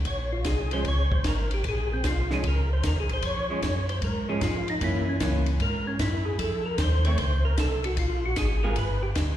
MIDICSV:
0, 0, Header, 1, 5, 480
1, 0, Start_track
1, 0, Key_signature, -5, "minor"
1, 0, Tempo, 395517
1, 72, Time_signature, 4, 2, 24, 8
1, 11370, End_track
2, 0, Start_track
2, 0, Title_t, "Tonewheel organ"
2, 0, Program_c, 0, 16
2, 88, Note_on_c, 0, 73, 76
2, 391, Note_off_c, 0, 73, 0
2, 394, Note_on_c, 0, 65, 68
2, 549, Note_off_c, 0, 65, 0
2, 563, Note_on_c, 0, 68, 74
2, 869, Note_off_c, 0, 68, 0
2, 886, Note_on_c, 0, 72, 79
2, 1036, Note_off_c, 0, 72, 0
2, 1070, Note_on_c, 0, 73, 91
2, 1359, Note_on_c, 0, 72, 88
2, 1363, Note_off_c, 0, 73, 0
2, 1513, Note_off_c, 0, 72, 0
2, 1551, Note_on_c, 0, 70, 71
2, 1844, Note_off_c, 0, 70, 0
2, 1866, Note_on_c, 0, 67, 79
2, 2007, Note_off_c, 0, 67, 0
2, 2044, Note_on_c, 0, 68, 78
2, 2331, Note_off_c, 0, 68, 0
2, 2348, Note_on_c, 0, 60, 63
2, 2488, Note_off_c, 0, 60, 0
2, 2512, Note_on_c, 0, 65, 69
2, 2806, Note_off_c, 0, 65, 0
2, 2835, Note_on_c, 0, 68, 76
2, 2972, Note_off_c, 0, 68, 0
2, 3005, Note_on_c, 0, 70, 74
2, 3292, Note_off_c, 0, 70, 0
2, 3312, Note_on_c, 0, 72, 93
2, 3451, Note_off_c, 0, 72, 0
2, 3482, Note_on_c, 0, 70, 81
2, 3616, Note_off_c, 0, 70, 0
2, 3640, Note_on_c, 0, 68, 74
2, 3775, Note_off_c, 0, 68, 0
2, 3805, Note_on_c, 0, 72, 72
2, 3938, Note_off_c, 0, 72, 0
2, 3947, Note_on_c, 0, 73, 84
2, 4685, Note_off_c, 0, 73, 0
2, 4724, Note_on_c, 0, 72, 72
2, 4877, Note_off_c, 0, 72, 0
2, 4907, Note_on_c, 0, 70, 82
2, 5204, Note_off_c, 0, 70, 0
2, 5212, Note_on_c, 0, 68, 74
2, 5361, Note_off_c, 0, 68, 0
2, 5378, Note_on_c, 0, 65, 71
2, 5679, Note_off_c, 0, 65, 0
2, 5701, Note_on_c, 0, 63, 71
2, 5846, Note_off_c, 0, 63, 0
2, 5876, Note_on_c, 0, 64, 79
2, 6168, Note_off_c, 0, 64, 0
2, 6178, Note_on_c, 0, 61, 83
2, 6269, Note_off_c, 0, 61, 0
2, 6821, Note_on_c, 0, 70, 82
2, 7120, Note_off_c, 0, 70, 0
2, 7129, Note_on_c, 0, 61, 63
2, 7279, Note_off_c, 0, 61, 0
2, 7289, Note_on_c, 0, 64, 76
2, 7588, Note_on_c, 0, 68, 84
2, 7594, Note_off_c, 0, 64, 0
2, 7748, Note_off_c, 0, 68, 0
2, 7756, Note_on_c, 0, 69, 74
2, 8067, Note_off_c, 0, 69, 0
2, 8077, Note_on_c, 0, 70, 89
2, 8233, Note_off_c, 0, 70, 0
2, 8251, Note_on_c, 0, 72, 81
2, 8555, Note_off_c, 0, 72, 0
2, 8555, Note_on_c, 0, 73, 86
2, 8712, Note_off_c, 0, 73, 0
2, 8726, Note_on_c, 0, 72, 88
2, 9032, Note_off_c, 0, 72, 0
2, 9042, Note_on_c, 0, 70, 84
2, 9195, Note_off_c, 0, 70, 0
2, 9216, Note_on_c, 0, 69, 85
2, 9517, Note_off_c, 0, 69, 0
2, 9532, Note_on_c, 0, 66, 79
2, 9680, Note_off_c, 0, 66, 0
2, 9696, Note_on_c, 0, 65, 69
2, 9997, Note_off_c, 0, 65, 0
2, 10020, Note_on_c, 0, 66, 82
2, 10164, Note_off_c, 0, 66, 0
2, 10174, Note_on_c, 0, 68, 73
2, 10474, Note_on_c, 0, 70, 77
2, 10476, Note_off_c, 0, 68, 0
2, 10630, Note_off_c, 0, 70, 0
2, 10650, Note_on_c, 0, 71, 100
2, 10953, Note_off_c, 0, 71, 0
2, 10955, Note_on_c, 0, 67, 95
2, 11051, Note_off_c, 0, 67, 0
2, 11370, End_track
3, 0, Start_track
3, 0, Title_t, "Hollow-body jazz guitar"
3, 0, Program_c, 1, 26
3, 881, Note_on_c, 1, 53, 55
3, 886, Note_on_c, 1, 56, 65
3, 893, Note_on_c, 1, 61, 67
3, 1022, Note_off_c, 1, 53, 0
3, 1024, Note_off_c, 1, 56, 0
3, 1028, Note_off_c, 1, 61, 0
3, 2800, Note_on_c, 1, 53, 66
3, 2809, Note_on_c, 1, 56, 63
3, 2817, Note_on_c, 1, 61, 70
3, 2943, Note_off_c, 1, 53, 0
3, 2947, Note_off_c, 1, 56, 0
3, 2951, Note_off_c, 1, 61, 0
3, 4247, Note_on_c, 1, 53, 53
3, 4254, Note_on_c, 1, 56, 54
3, 4260, Note_on_c, 1, 61, 62
3, 4387, Note_off_c, 1, 53, 0
3, 4390, Note_off_c, 1, 56, 0
3, 4393, Note_off_c, 1, 61, 0
3, 5202, Note_on_c, 1, 53, 61
3, 5209, Note_on_c, 1, 61, 70
3, 5211, Note_on_c, 1, 56, 61
3, 5345, Note_off_c, 1, 53, 0
3, 5348, Note_off_c, 1, 61, 0
3, 5349, Note_off_c, 1, 56, 0
3, 5837, Note_on_c, 1, 52, 48
3, 5845, Note_on_c, 1, 58, 55
3, 5852, Note_on_c, 1, 61, 55
3, 6126, Note_off_c, 1, 52, 0
3, 6130, Note_off_c, 1, 58, 0
3, 6133, Note_off_c, 1, 61, 0
3, 6323, Note_on_c, 1, 52, 51
3, 6323, Note_on_c, 1, 58, 53
3, 6334, Note_on_c, 1, 61, 58
3, 6609, Note_off_c, 1, 52, 0
3, 6609, Note_off_c, 1, 58, 0
3, 6614, Note_off_c, 1, 61, 0
3, 8569, Note_on_c, 1, 51, 51
3, 8576, Note_on_c, 1, 57, 61
3, 8580, Note_on_c, 1, 60, 58
3, 8708, Note_off_c, 1, 51, 0
3, 8711, Note_off_c, 1, 57, 0
3, 8713, Note_off_c, 1, 60, 0
3, 10480, Note_on_c, 1, 55, 62
3, 10485, Note_on_c, 1, 59, 68
3, 10486, Note_on_c, 1, 65, 62
3, 10494, Note_on_c, 1, 68, 68
3, 10622, Note_off_c, 1, 55, 0
3, 10625, Note_off_c, 1, 59, 0
3, 10625, Note_off_c, 1, 65, 0
3, 10629, Note_off_c, 1, 68, 0
3, 11370, End_track
4, 0, Start_track
4, 0, Title_t, "Tonewheel organ"
4, 0, Program_c, 2, 16
4, 62, Note_on_c, 2, 34, 81
4, 534, Note_off_c, 2, 34, 0
4, 546, Note_on_c, 2, 36, 85
4, 1016, Note_off_c, 2, 36, 0
4, 1032, Note_on_c, 2, 37, 79
4, 1499, Note_off_c, 2, 37, 0
4, 1513, Note_on_c, 2, 32, 75
4, 1981, Note_off_c, 2, 32, 0
4, 1999, Note_on_c, 2, 34, 87
4, 2464, Note_off_c, 2, 34, 0
4, 2479, Note_on_c, 2, 36, 84
4, 2944, Note_off_c, 2, 36, 0
4, 2960, Note_on_c, 2, 37, 86
4, 3425, Note_off_c, 2, 37, 0
4, 3444, Note_on_c, 2, 39, 86
4, 3591, Note_on_c, 2, 37, 52
4, 3597, Note_off_c, 2, 39, 0
4, 3753, Note_on_c, 2, 34, 64
4, 3755, Note_off_c, 2, 37, 0
4, 3904, Note_off_c, 2, 34, 0
4, 3918, Note_on_c, 2, 41, 76
4, 4384, Note_off_c, 2, 41, 0
4, 4401, Note_on_c, 2, 42, 74
4, 4866, Note_off_c, 2, 42, 0
4, 4880, Note_on_c, 2, 44, 83
4, 5345, Note_off_c, 2, 44, 0
4, 5356, Note_on_c, 2, 41, 79
4, 5823, Note_off_c, 2, 41, 0
4, 5841, Note_on_c, 2, 42, 78
4, 6306, Note_off_c, 2, 42, 0
4, 6314, Note_on_c, 2, 37, 79
4, 6782, Note_off_c, 2, 37, 0
4, 6798, Note_on_c, 2, 44, 83
4, 7264, Note_off_c, 2, 44, 0
4, 7277, Note_on_c, 2, 42, 73
4, 7743, Note_off_c, 2, 42, 0
4, 7755, Note_on_c, 2, 41, 86
4, 8222, Note_off_c, 2, 41, 0
4, 8232, Note_on_c, 2, 39, 86
4, 8700, Note_off_c, 2, 39, 0
4, 8709, Note_on_c, 2, 37, 93
4, 9178, Note_off_c, 2, 37, 0
4, 9192, Note_on_c, 2, 36, 78
4, 9660, Note_off_c, 2, 36, 0
4, 9672, Note_on_c, 2, 34, 88
4, 10140, Note_off_c, 2, 34, 0
4, 10150, Note_on_c, 2, 32, 95
4, 10619, Note_off_c, 2, 32, 0
4, 10632, Note_on_c, 2, 31, 90
4, 11099, Note_off_c, 2, 31, 0
4, 11115, Note_on_c, 2, 38, 80
4, 11370, Note_off_c, 2, 38, 0
4, 11370, End_track
5, 0, Start_track
5, 0, Title_t, "Drums"
5, 60, Note_on_c, 9, 51, 52
5, 67, Note_on_c, 9, 36, 20
5, 182, Note_off_c, 9, 51, 0
5, 188, Note_off_c, 9, 36, 0
5, 540, Note_on_c, 9, 44, 53
5, 540, Note_on_c, 9, 51, 58
5, 545, Note_on_c, 9, 38, 59
5, 549, Note_on_c, 9, 36, 21
5, 661, Note_off_c, 9, 44, 0
5, 661, Note_off_c, 9, 51, 0
5, 666, Note_off_c, 9, 38, 0
5, 671, Note_off_c, 9, 36, 0
5, 863, Note_on_c, 9, 51, 46
5, 985, Note_off_c, 9, 51, 0
5, 1027, Note_on_c, 9, 51, 51
5, 1033, Note_on_c, 9, 36, 25
5, 1148, Note_off_c, 9, 51, 0
5, 1154, Note_off_c, 9, 36, 0
5, 1354, Note_on_c, 9, 36, 49
5, 1476, Note_off_c, 9, 36, 0
5, 1506, Note_on_c, 9, 44, 52
5, 1506, Note_on_c, 9, 51, 60
5, 1511, Note_on_c, 9, 38, 64
5, 1515, Note_on_c, 9, 36, 17
5, 1628, Note_off_c, 9, 44, 0
5, 1628, Note_off_c, 9, 51, 0
5, 1633, Note_off_c, 9, 38, 0
5, 1637, Note_off_c, 9, 36, 0
5, 1830, Note_on_c, 9, 51, 41
5, 1951, Note_off_c, 9, 51, 0
5, 1990, Note_on_c, 9, 51, 57
5, 1999, Note_on_c, 9, 36, 16
5, 2111, Note_off_c, 9, 51, 0
5, 2120, Note_off_c, 9, 36, 0
5, 2473, Note_on_c, 9, 44, 60
5, 2473, Note_on_c, 9, 51, 55
5, 2478, Note_on_c, 9, 38, 61
5, 2481, Note_on_c, 9, 36, 17
5, 2594, Note_off_c, 9, 44, 0
5, 2594, Note_off_c, 9, 51, 0
5, 2599, Note_off_c, 9, 38, 0
5, 2602, Note_off_c, 9, 36, 0
5, 2799, Note_on_c, 9, 38, 49
5, 2920, Note_off_c, 9, 38, 0
5, 2956, Note_on_c, 9, 51, 59
5, 2963, Note_on_c, 9, 36, 23
5, 3078, Note_off_c, 9, 51, 0
5, 3084, Note_off_c, 9, 36, 0
5, 3440, Note_on_c, 9, 44, 54
5, 3440, Note_on_c, 9, 51, 65
5, 3443, Note_on_c, 9, 36, 23
5, 3445, Note_on_c, 9, 38, 60
5, 3561, Note_off_c, 9, 44, 0
5, 3561, Note_off_c, 9, 51, 0
5, 3564, Note_off_c, 9, 36, 0
5, 3566, Note_off_c, 9, 38, 0
5, 3754, Note_on_c, 9, 51, 41
5, 3875, Note_off_c, 9, 51, 0
5, 3913, Note_on_c, 9, 51, 59
5, 3922, Note_on_c, 9, 36, 16
5, 4034, Note_off_c, 9, 51, 0
5, 4043, Note_off_c, 9, 36, 0
5, 4400, Note_on_c, 9, 44, 50
5, 4400, Note_on_c, 9, 51, 61
5, 4402, Note_on_c, 9, 36, 19
5, 4405, Note_on_c, 9, 38, 59
5, 4521, Note_off_c, 9, 44, 0
5, 4521, Note_off_c, 9, 51, 0
5, 4523, Note_off_c, 9, 36, 0
5, 4526, Note_off_c, 9, 38, 0
5, 4722, Note_on_c, 9, 51, 42
5, 4843, Note_off_c, 9, 51, 0
5, 4877, Note_on_c, 9, 51, 51
5, 4880, Note_on_c, 9, 36, 23
5, 4998, Note_off_c, 9, 51, 0
5, 5002, Note_off_c, 9, 36, 0
5, 5355, Note_on_c, 9, 44, 48
5, 5355, Note_on_c, 9, 51, 60
5, 5360, Note_on_c, 9, 36, 23
5, 5360, Note_on_c, 9, 38, 64
5, 5476, Note_off_c, 9, 44, 0
5, 5476, Note_off_c, 9, 51, 0
5, 5481, Note_off_c, 9, 38, 0
5, 5482, Note_off_c, 9, 36, 0
5, 5678, Note_on_c, 9, 51, 42
5, 5799, Note_off_c, 9, 51, 0
5, 5839, Note_on_c, 9, 51, 64
5, 5840, Note_on_c, 9, 36, 23
5, 5960, Note_off_c, 9, 51, 0
5, 5962, Note_off_c, 9, 36, 0
5, 6314, Note_on_c, 9, 44, 55
5, 6314, Note_on_c, 9, 51, 60
5, 6318, Note_on_c, 9, 36, 16
5, 6319, Note_on_c, 9, 38, 64
5, 6436, Note_off_c, 9, 44, 0
5, 6436, Note_off_c, 9, 51, 0
5, 6439, Note_off_c, 9, 36, 0
5, 6440, Note_off_c, 9, 38, 0
5, 6630, Note_on_c, 9, 51, 45
5, 6751, Note_off_c, 9, 51, 0
5, 6794, Note_on_c, 9, 51, 49
5, 6798, Note_on_c, 9, 36, 20
5, 6916, Note_off_c, 9, 51, 0
5, 6919, Note_off_c, 9, 36, 0
5, 7273, Note_on_c, 9, 44, 52
5, 7273, Note_on_c, 9, 51, 62
5, 7277, Note_on_c, 9, 36, 18
5, 7278, Note_on_c, 9, 38, 67
5, 7394, Note_off_c, 9, 44, 0
5, 7394, Note_off_c, 9, 51, 0
5, 7398, Note_off_c, 9, 36, 0
5, 7399, Note_off_c, 9, 38, 0
5, 7754, Note_on_c, 9, 51, 58
5, 7756, Note_on_c, 9, 36, 20
5, 7875, Note_off_c, 9, 51, 0
5, 7877, Note_off_c, 9, 36, 0
5, 8228, Note_on_c, 9, 44, 54
5, 8228, Note_on_c, 9, 51, 62
5, 8233, Note_on_c, 9, 38, 65
5, 8234, Note_on_c, 9, 36, 17
5, 8349, Note_off_c, 9, 44, 0
5, 8349, Note_off_c, 9, 51, 0
5, 8354, Note_off_c, 9, 38, 0
5, 8356, Note_off_c, 9, 36, 0
5, 8551, Note_on_c, 9, 51, 44
5, 8673, Note_off_c, 9, 51, 0
5, 8710, Note_on_c, 9, 51, 57
5, 8714, Note_on_c, 9, 36, 19
5, 8832, Note_off_c, 9, 51, 0
5, 8835, Note_off_c, 9, 36, 0
5, 9193, Note_on_c, 9, 44, 57
5, 9193, Note_on_c, 9, 51, 61
5, 9195, Note_on_c, 9, 36, 19
5, 9198, Note_on_c, 9, 38, 67
5, 9314, Note_off_c, 9, 44, 0
5, 9314, Note_off_c, 9, 51, 0
5, 9316, Note_off_c, 9, 36, 0
5, 9319, Note_off_c, 9, 38, 0
5, 9515, Note_on_c, 9, 51, 46
5, 9637, Note_off_c, 9, 51, 0
5, 9670, Note_on_c, 9, 51, 63
5, 9675, Note_on_c, 9, 36, 21
5, 9791, Note_off_c, 9, 51, 0
5, 9796, Note_off_c, 9, 36, 0
5, 10147, Note_on_c, 9, 44, 59
5, 10147, Note_on_c, 9, 51, 65
5, 10152, Note_on_c, 9, 38, 61
5, 10153, Note_on_c, 9, 36, 17
5, 10268, Note_off_c, 9, 44, 0
5, 10268, Note_off_c, 9, 51, 0
5, 10273, Note_off_c, 9, 38, 0
5, 10275, Note_off_c, 9, 36, 0
5, 10627, Note_on_c, 9, 51, 62
5, 10633, Note_on_c, 9, 36, 19
5, 10749, Note_off_c, 9, 51, 0
5, 10754, Note_off_c, 9, 36, 0
5, 11109, Note_on_c, 9, 44, 58
5, 11109, Note_on_c, 9, 51, 63
5, 11113, Note_on_c, 9, 36, 22
5, 11114, Note_on_c, 9, 38, 66
5, 11231, Note_off_c, 9, 44, 0
5, 11231, Note_off_c, 9, 51, 0
5, 11235, Note_off_c, 9, 36, 0
5, 11236, Note_off_c, 9, 38, 0
5, 11370, End_track
0, 0, End_of_file